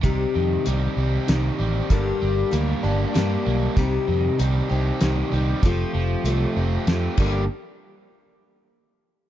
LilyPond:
<<
  \new Staff \with { instrumentName = "Steel-string acoustic guitar" } { \time 3/4 \key c \dorian \tempo 4 = 97 <c g c' ees' g'>4 <g c' ees' g'>4 <g c' ees' g'>4 | <g, d g bes d' g'>4 <g bes d' g'>8 <g bes d' g'>8 <g bes d' g'>4 | <c g c' ees' g'>4 <g c' ees' g'>8 <c' ees' g'>8 <g c' ees' g'>8 <c' ees' g'>8 | <f a c' f' g'>4 <a c' f' g'>4 <a c' f' g'>8 <g, d g bes d' g'>8 |
r2. | }
  \new Staff \with { instrumentName = "Overdriven electric guitar" } { \clef bass \time 3/4 \key c \dorian c8 ees8 g8 c'8 ees8 g8 | g,8 g8 bes8 d'8 g8 bes8 | c8 ees8 g8 c'8 ees8 g8 | f8 f8 a8 c'8 f8 <g, d g bes d' g'>8 |
r2. | }
  \new Staff \with { instrumentName = "Fingered electric bass" } { \clef bass \time 3/4 \key c \dorian c,8 f,8 c,8 c,8 c,8 a,,8 | g,,8 g,,8 d,8 g,,8 g,8 b,,8 | c,8 f,8 c,8 c,8 c,8 c,8 | f,,8 f,,8 c,8 f,,8 f,8 g,,8 |
r2. | }
  \new DrumStaff \with { instrumentName = "Drums" } \drummode { \time 3/4 <hh bd>4 hh4 <hh sn>4 | <hh bd>4 hh4 <hh sn>4 | <hh bd>4 hh4 <hh sn>4 | <hh bd>4 hh4 <hh sn>8 <cymc bd>8 |
r4 r4 r4 | }
>>